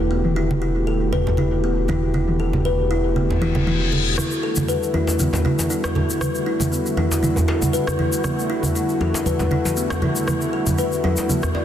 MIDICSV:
0, 0, Header, 1, 7, 480
1, 0, Start_track
1, 0, Key_signature, 1, "minor"
1, 0, Tempo, 508475
1, 103, Time_signature, 4, 2, 24, 8
1, 10995, End_track
2, 0, Start_track
2, 0, Title_t, "Kalimba"
2, 0, Program_c, 0, 108
2, 101, Note_on_c, 0, 59, 75
2, 220, Note_off_c, 0, 59, 0
2, 343, Note_on_c, 0, 64, 91
2, 461, Note_off_c, 0, 64, 0
2, 583, Note_on_c, 0, 64, 77
2, 701, Note_off_c, 0, 64, 0
2, 823, Note_on_c, 0, 69, 71
2, 941, Note_off_c, 0, 69, 0
2, 1063, Note_on_c, 0, 71, 90
2, 1188, Note_off_c, 0, 71, 0
2, 1303, Note_on_c, 0, 64, 86
2, 1374, Note_off_c, 0, 64, 0
2, 1546, Note_on_c, 0, 59, 77
2, 1662, Note_off_c, 0, 59, 0
2, 1783, Note_on_c, 0, 64, 87
2, 1901, Note_off_c, 0, 64, 0
2, 2022, Note_on_c, 0, 64, 73
2, 2141, Note_off_c, 0, 64, 0
2, 2262, Note_on_c, 0, 69, 67
2, 2380, Note_off_c, 0, 69, 0
2, 2503, Note_on_c, 0, 71, 86
2, 2628, Note_off_c, 0, 71, 0
2, 2744, Note_on_c, 0, 64, 95
2, 2814, Note_off_c, 0, 64, 0
2, 2984, Note_on_c, 0, 59, 71
2, 3102, Note_off_c, 0, 59, 0
2, 3225, Note_on_c, 0, 64, 92
2, 3342, Note_off_c, 0, 64, 0
2, 3466, Note_on_c, 0, 64, 78
2, 3583, Note_off_c, 0, 64, 0
2, 3705, Note_on_c, 0, 69, 70
2, 3822, Note_off_c, 0, 69, 0
2, 3945, Note_on_c, 0, 64, 76
2, 4062, Note_off_c, 0, 64, 0
2, 4185, Note_on_c, 0, 69, 72
2, 4302, Note_off_c, 0, 69, 0
2, 4422, Note_on_c, 0, 71, 85
2, 4547, Note_off_c, 0, 71, 0
2, 4664, Note_on_c, 0, 64, 91
2, 4734, Note_off_c, 0, 64, 0
2, 4904, Note_on_c, 0, 59, 74
2, 5021, Note_off_c, 0, 59, 0
2, 5143, Note_on_c, 0, 64, 90
2, 5261, Note_off_c, 0, 64, 0
2, 5382, Note_on_c, 0, 64, 82
2, 5501, Note_off_c, 0, 64, 0
2, 5622, Note_on_c, 0, 69, 68
2, 5740, Note_off_c, 0, 69, 0
2, 5864, Note_on_c, 0, 71, 91
2, 5988, Note_off_c, 0, 71, 0
2, 6101, Note_on_c, 0, 64, 93
2, 6173, Note_off_c, 0, 64, 0
2, 6343, Note_on_c, 0, 59, 75
2, 6461, Note_off_c, 0, 59, 0
2, 6584, Note_on_c, 0, 64, 92
2, 6701, Note_off_c, 0, 64, 0
2, 6823, Note_on_c, 0, 64, 74
2, 6941, Note_off_c, 0, 64, 0
2, 7061, Note_on_c, 0, 69, 74
2, 7180, Note_off_c, 0, 69, 0
2, 7300, Note_on_c, 0, 71, 101
2, 7426, Note_off_c, 0, 71, 0
2, 7542, Note_on_c, 0, 64, 90
2, 7613, Note_off_c, 0, 64, 0
2, 7783, Note_on_c, 0, 59, 75
2, 7901, Note_off_c, 0, 59, 0
2, 8021, Note_on_c, 0, 64, 98
2, 8140, Note_off_c, 0, 64, 0
2, 8264, Note_on_c, 0, 64, 81
2, 8381, Note_off_c, 0, 64, 0
2, 8504, Note_on_c, 0, 69, 73
2, 8622, Note_off_c, 0, 69, 0
2, 8743, Note_on_c, 0, 71, 90
2, 8867, Note_off_c, 0, 71, 0
2, 8982, Note_on_c, 0, 64, 97
2, 9053, Note_off_c, 0, 64, 0
2, 9223, Note_on_c, 0, 59, 84
2, 9341, Note_off_c, 0, 59, 0
2, 9461, Note_on_c, 0, 64, 98
2, 9580, Note_off_c, 0, 64, 0
2, 9702, Note_on_c, 0, 64, 83
2, 9820, Note_off_c, 0, 64, 0
2, 9941, Note_on_c, 0, 69, 74
2, 10060, Note_off_c, 0, 69, 0
2, 10181, Note_on_c, 0, 71, 99
2, 10306, Note_off_c, 0, 71, 0
2, 10421, Note_on_c, 0, 64, 99
2, 10493, Note_off_c, 0, 64, 0
2, 10661, Note_on_c, 0, 59, 75
2, 10780, Note_off_c, 0, 59, 0
2, 10901, Note_on_c, 0, 74, 68
2, 10995, Note_off_c, 0, 74, 0
2, 10995, End_track
3, 0, Start_track
3, 0, Title_t, "Analog synth pad"
3, 0, Program_c, 1, 89
3, 0, Note_on_c, 1, 50, 75
3, 0, Note_on_c, 1, 57, 71
3, 0, Note_on_c, 1, 66, 72
3, 0, Note_on_c, 1, 67, 85
3, 3904, Note_off_c, 1, 50, 0
3, 3905, Note_off_c, 1, 57, 0
3, 3905, Note_off_c, 1, 66, 0
3, 3905, Note_off_c, 1, 67, 0
3, 3947, Note_on_c, 1, 55, 73
3, 3947, Note_on_c, 1, 66, 87
3, 3948, Note_on_c, 1, 50, 79
3, 3949, Note_on_c, 1, 57, 73
3, 3949, Note_on_c, 1, 64, 69
3, 10995, Note_off_c, 1, 50, 0
3, 10995, Note_off_c, 1, 55, 0
3, 10995, Note_off_c, 1, 57, 0
3, 10995, Note_off_c, 1, 64, 0
3, 10995, Note_off_c, 1, 66, 0
3, 10995, End_track
4, 0, Start_track
4, 0, Title_t, "Detuned saw bass"
4, 0, Program_c, 2, 39
4, 0, Note_on_c, 2, 28, 78
4, 3923, Note_off_c, 2, 28, 0
4, 10995, End_track
5, 0, Start_track
5, 0, Title_t, "Reverse cymbal"
5, 0, Program_c, 3, 119
5, 2984, Note_on_c, 3, 60, 66
5, 3943, Note_off_c, 3, 60, 0
5, 10995, End_track
6, 0, Start_track
6, 0, Title_t, "Djembe"
6, 4313, Note_on_c, 9, 63, 56
6, 4407, Note_off_c, 9, 63, 0
6, 4666, Note_on_c, 9, 63, 68
6, 4760, Note_off_c, 9, 63, 0
6, 4790, Note_on_c, 9, 62, 76
6, 4884, Note_off_c, 9, 62, 0
6, 5035, Note_on_c, 9, 62, 80
6, 5130, Note_off_c, 9, 62, 0
6, 5276, Note_on_c, 9, 62, 67
6, 5371, Note_off_c, 9, 62, 0
6, 5516, Note_on_c, 9, 63, 83
6, 5521, Note_on_c, 9, 62, 79
6, 5611, Note_off_c, 9, 63, 0
6, 5615, Note_off_c, 9, 62, 0
6, 6236, Note_on_c, 9, 63, 64
6, 6331, Note_off_c, 9, 63, 0
6, 6580, Note_on_c, 9, 63, 83
6, 6675, Note_off_c, 9, 63, 0
6, 6716, Note_on_c, 9, 62, 84
6, 6810, Note_off_c, 9, 62, 0
6, 6948, Note_on_c, 9, 63, 83
6, 7043, Note_off_c, 9, 63, 0
6, 7063, Note_on_c, 9, 62, 103
6, 7157, Note_off_c, 9, 62, 0
6, 7433, Note_on_c, 9, 63, 84
6, 7527, Note_off_c, 9, 63, 0
6, 8150, Note_on_c, 9, 63, 60
6, 8244, Note_off_c, 9, 63, 0
6, 8503, Note_on_c, 9, 63, 89
6, 8597, Note_off_c, 9, 63, 0
6, 8631, Note_on_c, 9, 62, 90
6, 8725, Note_off_c, 9, 62, 0
6, 8868, Note_on_c, 9, 62, 70
6, 8962, Note_off_c, 9, 62, 0
6, 9113, Note_on_c, 9, 62, 73
6, 9207, Note_off_c, 9, 62, 0
6, 9351, Note_on_c, 9, 62, 77
6, 9356, Note_on_c, 9, 63, 88
6, 9446, Note_off_c, 9, 62, 0
6, 9451, Note_off_c, 9, 63, 0
6, 10066, Note_on_c, 9, 63, 69
6, 10160, Note_off_c, 9, 63, 0
6, 10426, Note_on_c, 9, 63, 86
6, 10520, Note_off_c, 9, 63, 0
6, 10553, Note_on_c, 9, 62, 77
6, 10648, Note_off_c, 9, 62, 0
6, 10797, Note_on_c, 9, 63, 74
6, 10891, Note_off_c, 9, 63, 0
6, 10900, Note_on_c, 9, 62, 83
6, 10994, Note_off_c, 9, 62, 0
6, 10995, End_track
7, 0, Start_track
7, 0, Title_t, "Drums"
7, 233, Note_on_c, 9, 47, 79
7, 328, Note_off_c, 9, 47, 0
7, 479, Note_on_c, 9, 63, 89
7, 573, Note_off_c, 9, 63, 0
7, 1063, Note_on_c, 9, 63, 58
7, 1063, Note_on_c, 9, 64, 67
7, 1157, Note_off_c, 9, 63, 0
7, 1158, Note_off_c, 9, 64, 0
7, 1198, Note_on_c, 9, 64, 104
7, 1293, Note_off_c, 9, 64, 0
7, 1296, Note_on_c, 9, 63, 79
7, 1390, Note_off_c, 9, 63, 0
7, 1777, Note_on_c, 9, 63, 67
7, 1781, Note_on_c, 9, 47, 74
7, 1790, Note_on_c, 9, 64, 83
7, 1871, Note_off_c, 9, 63, 0
7, 1876, Note_off_c, 9, 47, 0
7, 1884, Note_off_c, 9, 64, 0
7, 2019, Note_on_c, 9, 63, 57
7, 2113, Note_off_c, 9, 63, 0
7, 2154, Note_on_c, 9, 47, 81
7, 2248, Note_off_c, 9, 47, 0
7, 2392, Note_on_c, 9, 64, 80
7, 2395, Note_on_c, 9, 63, 79
7, 2486, Note_off_c, 9, 64, 0
7, 2490, Note_off_c, 9, 63, 0
7, 2982, Note_on_c, 9, 63, 62
7, 3076, Note_off_c, 9, 63, 0
7, 3120, Note_on_c, 9, 64, 89
7, 3214, Note_off_c, 9, 64, 0
7, 3224, Note_on_c, 9, 47, 81
7, 3318, Note_off_c, 9, 47, 0
7, 3351, Note_on_c, 9, 64, 87
7, 3356, Note_on_c, 9, 63, 83
7, 3445, Note_off_c, 9, 64, 0
7, 3451, Note_off_c, 9, 63, 0
7, 3463, Note_on_c, 9, 47, 79
7, 3557, Note_off_c, 9, 47, 0
7, 3704, Note_on_c, 9, 63, 67
7, 3799, Note_off_c, 9, 63, 0
7, 3943, Note_on_c, 9, 37, 74
7, 3943, Note_on_c, 9, 47, 45
7, 3944, Note_on_c, 9, 63, 52
7, 3953, Note_on_c, 9, 82, 60
7, 4037, Note_off_c, 9, 37, 0
7, 4037, Note_off_c, 9, 47, 0
7, 4039, Note_off_c, 9, 63, 0
7, 4047, Note_off_c, 9, 82, 0
7, 4070, Note_on_c, 9, 82, 36
7, 4164, Note_off_c, 9, 82, 0
7, 4304, Note_on_c, 9, 82, 78
7, 4313, Note_on_c, 9, 47, 41
7, 4318, Note_on_c, 9, 63, 90
7, 4398, Note_off_c, 9, 82, 0
7, 4408, Note_off_c, 9, 47, 0
7, 4412, Note_off_c, 9, 63, 0
7, 4424, Note_on_c, 9, 82, 64
7, 4518, Note_off_c, 9, 82, 0
7, 4558, Note_on_c, 9, 82, 38
7, 4653, Note_off_c, 9, 82, 0
7, 4661, Note_on_c, 9, 47, 50
7, 4755, Note_off_c, 9, 47, 0
7, 4802, Note_on_c, 9, 82, 70
7, 4897, Note_off_c, 9, 82, 0
7, 4902, Note_on_c, 9, 47, 44
7, 4902, Note_on_c, 9, 82, 60
7, 4908, Note_on_c, 9, 63, 57
7, 4912, Note_on_c, 9, 64, 72
7, 4996, Note_off_c, 9, 82, 0
7, 4997, Note_off_c, 9, 47, 0
7, 5002, Note_off_c, 9, 63, 0
7, 5006, Note_off_c, 9, 64, 0
7, 5030, Note_on_c, 9, 64, 104
7, 5045, Note_on_c, 9, 82, 35
7, 5124, Note_off_c, 9, 64, 0
7, 5139, Note_off_c, 9, 82, 0
7, 5150, Note_on_c, 9, 63, 81
7, 5245, Note_off_c, 9, 63, 0
7, 5273, Note_on_c, 9, 47, 42
7, 5279, Note_on_c, 9, 82, 74
7, 5367, Note_off_c, 9, 47, 0
7, 5374, Note_off_c, 9, 82, 0
7, 5381, Note_on_c, 9, 82, 64
7, 5476, Note_off_c, 9, 82, 0
7, 5512, Note_on_c, 9, 37, 85
7, 5516, Note_on_c, 9, 82, 37
7, 5607, Note_off_c, 9, 37, 0
7, 5610, Note_off_c, 9, 82, 0
7, 5619, Note_on_c, 9, 63, 60
7, 5627, Note_on_c, 9, 64, 94
7, 5714, Note_off_c, 9, 63, 0
7, 5722, Note_off_c, 9, 64, 0
7, 5759, Note_on_c, 9, 82, 69
7, 5853, Note_off_c, 9, 82, 0
7, 5862, Note_on_c, 9, 63, 63
7, 5863, Note_on_c, 9, 37, 82
7, 5863, Note_on_c, 9, 47, 49
7, 5867, Note_on_c, 9, 82, 68
7, 5957, Note_off_c, 9, 37, 0
7, 5957, Note_off_c, 9, 47, 0
7, 5957, Note_off_c, 9, 63, 0
7, 5962, Note_off_c, 9, 82, 0
7, 5993, Note_on_c, 9, 82, 42
7, 6088, Note_off_c, 9, 82, 0
7, 6229, Note_on_c, 9, 64, 87
7, 6234, Note_on_c, 9, 47, 44
7, 6235, Note_on_c, 9, 63, 90
7, 6238, Note_on_c, 9, 82, 69
7, 6323, Note_off_c, 9, 64, 0
7, 6329, Note_off_c, 9, 47, 0
7, 6330, Note_off_c, 9, 63, 0
7, 6332, Note_off_c, 9, 82, 0
7, 6351, Note_on_c, 9, 82, 70
7, 6445, Note_off_c, 9, 82, 0
7, 6476, Note_on_c, 9, 82, 39
7, 6571, Note_off_c, 9, 82, 0
7, 6581, Note_on_c, 9, 47, 52
7, 6676, Note_off_c, 9, 47, 0
7, 6721, Note_on_c, 9, 82, 86
7, 6815, Note_off_c, 9, 82, 0
7, 6822, Note_on_c, 9, 47, 49
7, 6823, Note_on_c, 9, 63, 67
7, 6827, Note_on_c, 9, 82, 65
7, 6916, Note_off_c, 9, 47, 0
7, 6917, Note_off_c, 9, 63, 0
7, 6922, Note_off_c, 9, 82, 0
7, 6958, Note_on_c, 9, 64, 112
7, 6959, Note_on_c, 9, 82, 42
7, 7052, Note_off_c, 9, 64, 0
7, 7053, Note_off_c, 9, 82, 0
7, 7193, Note_on_c, 9, 63, 99
7, 7195, Note_on_c, 9, 64, 93
7, 7197, Note_on_c, 9, 82, 84
7, 7287, Note_off_c, 9, 63, 0
7, 7290, Note_off_c, 9, 64, 0
7, 7291, Note_off_c, 9, 82, 0
7, 7304, Note_on_c, 9, 82, 67
7, 7398, Note_off_c, 9, 82, 0
7, 7433, Note_on_c, 9, 37, 89
7, 7437, Note_on_c, 9, 63, 54
7, 7439, Note_on_c, 9, 82, 40
7, 7527, Note_off_c, 9, 37, 0
7, 7531, Note_off_c, 9, 63, 0
7, 7533, Note_off_c, 9, 82, 0
7, 7541, Note_on_c, 9, 47, 56
7, 7543, Note_on_c, 9, 63, 62
7, 7636, Note_off_c, 9, 47, 0
7, 7637, Note_off_c, 9, 63, 0
7, 7671, Note_on_c, 9, 82, 79
7, 7766, Note_off_c, 9, 82, 0
7, 7779, Note_on_c, 9, 82, 68
7, 7780, Note_on_c, 9, 37, 79
7, 7780, Note_on_c, 9, 47, 54
7, 7781, Note_on_c, 9, 63, 69
7, 7873, Note_off_c, 9, 82, 0
7, 7875, Note_off_c, 9, 37, 0
7, 7875, Note_off_c, 9, 47, 0
7, 7875, Note_off_c, 9, 63, 0
7, 7923, Note_on_c, 9, 82, 43
7, 8018, Note_off_c, 9, 82, 0
7, 8147, Note_on_c, 9, 63, 91
7, 8158, Note_on_c, 9, 82, 86
7, 8241, Note_off_c, 9, 63, 0
7, 8252, Note_off_c, 9, 82, 0
7, 8266, Note_on_c, 9, 82, 72
7, 8360, Note_off_c, 9, 82, 0
7, 8392, Note_on_c, 9, 82, 37
7, 8486, Note_off_c, 9, 82, 0
7, 8501, Note_on_c, 9, 47, 61
7, 8596, Note_off_c, 9, 47, 0
7, 8642, Note_on_c, 9, 82, 81
7, 8736, Note_off_c, 9, 82, 0
7, 8740, Note_on_c, 9, 64, 86
7, 8741, Note_on_c, 9, 47, 54
7, 8741, Note_on_c, 9, 63, 61
7, 8744, Note_on_c, 9, 82, 67
7, 8835, Note_off_c, 9, 47, 0
7, 8835, Note_off_c, 9, 63, 0
7, 8835, Note_off_c, 9, 64, 0
7, 8839, Note_off_c, 9, 82, 0
7, 8870, Note_on_c, 9, 82, 38
7, 8874, Note_on_c, 9, 64, 115
7, 8965, Note_off_c, 9, 82, 0
7, 8968, Note_off_c, 9, 64, 0
7, 8977, Note_on_c, 9, 63, 86
7, 9071, Note_off_c, 9, 63, 0
7, 9113, Note_on_c, 9, 47, 53
7, 9119, Note_on_c, 9, 82, 79
7, 9207, Note_off_c, 9, 47, 0
7, 9213, Note_off_c, 9, 82, 0
7, 9220, Note_on_c, 9, 82, 61
7, 9314, Note_off_c, 9, 82, 0
7, 9349, Note_on_c, 9, 37, 91
7, 9358, Note_on_c, 9, 82, 38
7, 9444, Note_off_c, 9, 37, 0
7, 9452, Note_off_c, 9, 82, 0
7, 9458, Note_on_c, 9, 64, 92
7, 9460, Note_on_c, 9, 47, 61
7, 9465, Note_on_c, 9, 63, 70
7, 9553, Note_off_c, 9, 64, 0
7, 9554, Note_off_c, 9, 47, 0
7, 9559, Note_off_c, 9, 63, 0
7, 9590, Note_on_c, 9, 82, 75
7, 9684, Note_off_c, 9, 82, 0
7, 9700, Note_on_c, 9, 37, 82
7, 9700, Note_on_c, 9, 47, 64
7, 9703, Note_on_c, 9, 82, 61
7, 9705, Note_on_c, 9, 63, 67
7, 9795, Note_off_c, 9, 37, 0
7, 9795, Note_off_c, 9, 47, 0
7, 9798, Note_off_c, 9, 82, 0
7, 9799, Note_off_c, 9, 63, 0
7, 9829, Note_on_c, 9, 82, 45
7, 9923, Note_off_c, 9, 82, 0
7, 10070, Note_on_c, 9, 63, 84
7, 10070, Note_on_c, 9, 82, 82
7, 10071, Note_on_c, 9, 47, 58
7, 10075, Note_on_c, 9, 64, 85
7, 10164, Note_off_c, 9, 63, 0
7, 10164, Note_off_c, 9, 82, 0
7, 10165, Note_off_c, 9, 47, 0
7, 10170, Note_off_c, 9, 64, 0
7, 10179, Note_on_c, 9, 82, 68
7, 10274, Note_off_c, 9, 82, 0
7, 10311, Note_on_c, 9, 82, 36
7, 10406, Note_off_c, 9, 82, 0
7, 10419, Note_on_c, 9, 47, 66
7, 10513, Note_off_c, 9, 47, 0
7, 10544, Note_on_c, 9, 82, 82
7, 10638, Note_off_c, 9, 82, 0
7, 10659, Note_on_c, 9, 47, 63
7, 10664, Note_on_c, 9, 82, 64
7, 10665, Note_on_c, 9, 63, 67
7, 10754, Note_off_c, 9, 47, 0
7, 10758, Note_off_c, 9, 82, 0
7, 10759, Note_off_c, 9, 63, 0
7, 10787, Note_on_c, 9, 82, 39
7, 10792, Note_on_c, 9, 37, 86
7, 10797, Note_on_c, 9, 64, 86
7, 10881, Note_off_c, 9, 82, 0
7, 10886, Note_off_c, 9, 37, 0
7, 10891, Note_off_c, 9, 64, 0
7, 10995, End_track
0, 0, End_of_file